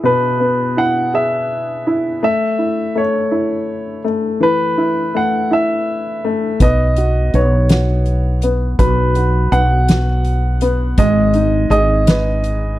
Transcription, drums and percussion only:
6.60 kick, closed hi-hat
6.96 closed hi-hat
7.34 closed hi-hat
7.69 snare, closed hi-hat
8.06 closed hi-hat
8.42 closed hi-hat
8.79 kick, closed hi-hat
9.15 closed hi-hat
9.52 closed hi-hat
9.88 snare, closed hi-hat
10.25 closed hi-hat
10.61 closed hi-hat
10.98 kick, closed hi-hat
11.34 closed hi-hat
11.71 closed hi-hat
12.07 snare, closed hi-hat
12.44 closed hi-hat

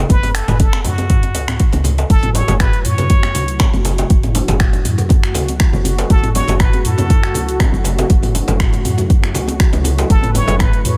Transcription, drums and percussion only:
0.09 kick, closed hi-hat, high conga, djembe bass, cabasa
0.23 open hi-hat, muted conga, djembe tone, low conga, cabasa
0.35 finger snap, open hi-hat, cabasa
0.48 closed hi-hat, mid tom, djembe slap, djembe tone, cabasa
0.60 kick, closed hi-hat, muted conga, djembe bass, cabasa
0.73 finger snap, closed hi-hat, djembe tone, cabasa
0.84 open hi-hat, high conga, low conga, cabasa
0.98 closed hi-hat, muted conga, djembe tone, cabasa
1.10 kick, closed hi-hat, mid tom, high conga, cabasa
1.23 closed hi-hat, djembe tone, cabasa
1.35 open hi-hat, djembe slap, muted conga, cabasa
1.48 finger snap, mid tom, djembe tone, cabasa
1.60 kick, closed hi-hat, cabasa
1.72 closed hi-hat, djembe slap, muted conga, djembe tone, cabasa
1.84 open hi-hat, high conga, low conga, cabasa
1.98 closed hi-hat, djembe slap, djembe tone, cabasa
2.10 kick, closed hi-hat, cabasa
2.23 closed hi-hat, mid tom, muted conga, djembe bass, cabasa
2.34 open hi-hat, djembe tone, low conga, cabasa
2.48 closed hi-hat, djembe slap, low conga, cabasa
2.60 finger snap, kick, closed hi-hat, mid tom, djembe tone, cabasa
2.73 closed hi-hat, cabasa
2.85 mid tom, open hi-hat, cabasa
2.98 closed hi-hat, muted conga, djembe tone, high conga, cabasa
3.10 kick, closed hi-hat, cabasa
3.23 finger snap, djembe tone, cabasa
3.35 open hi-hat, muted conga, high conga, cabasa
3.48 closed hi-hat, cabasa
3.59 finger snap, kick, closed hi-hat, djembe tone, low conga, cabasa
3.73 muted conga, djembe bass, cabasa
3.85 open hi-hat, djembe slap, djembe tone, high conga, cabasa
3.98 closed hi-hat, djembe slap, high conga, cabasa
4.10 kick, closed hi-hat, cabasa
4.23 closed hi-hat, mid tom, muted conga, djembe tone, djembe bass, cabasa
4.35 open hi-hat, low conga, cabasa
4.48 closed hi-hat, djembe slap, djembe tone, low conga, cabasa
4.60 finger snap, kick, closed hi-hat, mid tom, cabasa
4.73 closed hi-hat, low conga, cabasa
4.85 mid tom, open hi-hat, djembe tone, cabasa
4.98 closed hi-hat, muted conga, high conga, cabasa
5.09 kick, closed hi-hat, djembe tone, cabasa
5.23 finger snap, cabasa
5.34 open hi-hat, muted conga, djembe slap, high conga, cabasa
5.48 closed hi-hat, djembe tone, cabasa
5.60 finger snap, kick, closed hi-hat, cabasa
5.73 muted conga, djembe tone, high conga, cabasa
5.84 open hi-hat, high conga, djembe bass, cabasa
5.98 closed hi-hat, djembe slap, cabasa
6.10 kick, closed hi-hat, djembe tone, cabasa
6.23 closed hi-hat, mid tom, muted conga, djembe bass, cabasa
6.35 open hi-hat, djembe tone, low conga, cabasa
6.48 closed hi-hat, djembe slap, low conga, cabasa
6.59 finger snap, kick, closed hi-hat, mid tom, muted conga, cabasa
6.73 closed hi-hat, djembe tone, cabasa
6.85 mid tom, open hi-hat, cabasa
6.98 closed hi-hat, muted conga, high conga, djembe tone, cabasa
7.10 kick, closed hi-hat, cabasa
7.23 finger snap, cabasa
7.34 open hi-hat, muted conga, high conga, djembe tone, cabasa
7.49 closed hi-hat, cabasa
7.60 finger snap, kick, closed hi-hat, djembe tone, low conga, cabasa
7.72 muted conga, djembe bass, cabasa
7.84 open hi-hat, djembe slap, high conga, cabasa
7.98 closed hi-hat, djembe slap, high conga, djembe tone, cabasa
8.10 kick, closed hi-hat, cabasa
8.23 mid tom, open hi-hat, muted conga, djembe tone, djembe bass, cabasa
8.35 open hi-hat, low conga, cabasa
8.48 closed hi-hat, djembe slap, low conga, cabasa
8.60 finger snap, kick, closed hi-hat, mid tom, djembe tone, cabasa
8.73 closed hi-hat, low conga, cabasa
8.85 mid tom, open hi-hat, djembe tone, cabasa
8.98 closed hi-hat, muted conga, high conga, cabasa
9.10 kick, closed hi-hat, cabasa
9.22 finger snap, djembe tone, cabasa
9.34 open hi-hat, djembe slap, muted conga, high conga, cabasa
9.48 closed hi-hat, djembe tone, cabasa
9.60 finger snap, kick, closed hi-hat, cabasa
9.73 closed hi-hat, djembe slap, muted conga, high conga, cabasa
9.84 open hi-hat, high conga, djembe tone, djembe bass, cabasa
9.98 closed hi-hat, djembe slap, cabasa
10.10 kick, closed hi-hat, cabasa
10.22 closed hi-hat, mid tom, muted conga, djembe bass, cabasa
10.35 open hi-hat, djembe tone, low conga, cabasa
10.48 closed hi-hat, djembe slap, low conga, cabasa
10.59 finger snap, kick, closed hi-hat, mid tom, djembe tone, cabasa
10.73 closed hi-hat, cabasa
10.85 mid tom, open hi-hat, cabasa

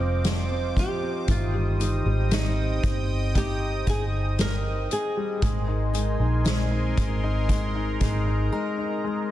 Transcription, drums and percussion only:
0.24 snare, closed hi-hat
0.77 kick, closed hi-hat
1.28 kick, closed hi-hat
1.81 closed hi-hat
2.31 snare, closed hi-hat
2.83 kick, closed hi-hat
3.35 kick, closed hi-hat
3.87 kick, closed hi-hat
4.39 snare, closed hi-hat
4.91 closed hi-hat
5.42 kick, closed hi-hat
5.95 closed hi-hat
6.45 snare, closed hi-hat
6.97 kick, closed hi-hat
7.49 kick, closed hi-hat
8.01 kick, closed hi-hat

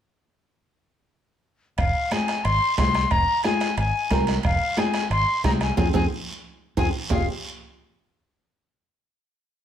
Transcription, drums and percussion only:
1.78 bombo low, bombo rim, high conga, high timbale, long guiro
2.11 bombo rim, high conga, high timbale, short guiro
2.28 bombo rim, high timbale, short guiro
2.45 bombo rim, high conga, high timbale, long guiro
2.78 bombo low, bombo rim, high conga, high timbale, low timbale, short guiro
2.95 bombo rim, high timbale, short guiro
3.11 bombo low, bombo rim, high conga, high timbale, long guiro
3.44 bombo rim, high conga, high timbale, short guiro
3.60 bombo rim, high timbale, short guiro
3.77 bombo rim, high conga, high timbale, long guiro
4.11 bombo low, bombo rim, high conga, high timbale, low timbale, short guiro
4.27 bombo rim, high timbale, short guiro
4.43 bombo low, bombo rim, high conga, high timbale, long guiro
4.77 bombo rim, high conga, high timbale, short guiro
4.94 bombo rim, high timbale, short guiro
5.11 bombo rim, high conga, high timbale, long guiro
5.44 bombo low, bombo rim, high conga, high timbale, low timbale, short guiro
5.61 bombo rim, high timbale, short guiro
5.77 bombo low, low conga, high timbale, long guiro
5.94 bombo low, low conga, high timbale, long guiro
6.77 bombo low, low conga, high timbale, long guiro
7.10 bombo low, low conga, low timbale, long guiro

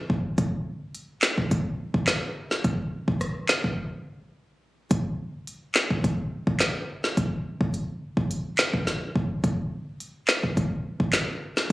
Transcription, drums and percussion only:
0.10 kick
0.38 kick, closed hi-hat
0.95 closed hi-hat
1.23 snare, clap
1.38 kick
1.51 kick, closed hi-hat
1.94 kick
2.07 snare, clap, closed hi-hat
2.51 snare
2.64 kick, closed hi-hat
3.08 kick
3.21 cross-stick, closed hi-hat
3.49 snare, clap
3.64 kick
4.91 kick, closed hi-hat
5.47 closed hi-hat
5.75 snare, clap
5.91 kick
6.04 kick, closed hi-hat
6.47 kick
6.60 snare, clap, closed hi-hat
7.04 snare
7.17 kick, closed hi-hat
7.61 kick
7.74 closed hi-hat
8.17 kick
8.31 closed hi-hat
8.59 snare, clap
8.74 kick
8.87 snare, closed hi-hat
9.16 kick
9.44 kick, closed hi-hat
10.00 closed hi-hat
10.28 snare, clap
10.43 kick
10.57 kick, closed hi-hat
11.00 kick
11.13 snare, clap, closed hi-hat
11.57 snare

